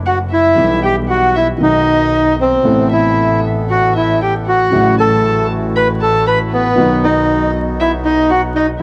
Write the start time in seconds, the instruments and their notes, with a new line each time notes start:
Already playing: double bass F#1, grand piano F#2 C3 F#3 A3 F#4
0.06 bandoneon F#4, violin F#5
0.31 bandoneon E4, violin E5
0.55 double bass B1, grand piano B1 B2 E3 G3 B3
0.59 grand piano G4
0.83 bandoneon G4, violin G5
1.08 bandoneon F#4, violin F#5
1.35 bandoneon E4, violin E5
1.58 grand piano B1 B2 D#3 F#3 B3, double bass B1, violin D#5
1.62 bandoneon D#4, grand piano F#4
2.40 bandoneon C4, violin C5
2.62 grand piano A1 A2 C3 A3 B3 E4, double bass A1, bandoneon B3 A4
2.92 bandoneon E4, violin E5
3.70 bandoneon F#4, violin F#5
3.96 bandoneon E4, violin E5
4.22 bandoneon G4, violin G5
4.47 bandoneon F#4, violin F#5
4.71 grand piano A1 A2 C#3 F#3 A3 E4, double bass A1, bandoneon A3 E4 F#4
4.98 bandoneon A4, violin A5
5.76 bandoneon B4, violin B5
6.01 bandoneon A4, violin A5
6.27 bandoneon B4, violin B5
6.52 bandoneon B3, violin B4
6.76 double bass B1, grand piano B1 B2 D#3 F#3 B3 F#4, bandoneon B3 D#4 F#4
7.04 bandoneon D#4, violin D#5
7.80 bandoneon E4, violin E5
8.05 bandoneon D#4, violin D#5
8.30 bandoneon F#4, violin F#5
8.55 bandoneon D#4, violin D#5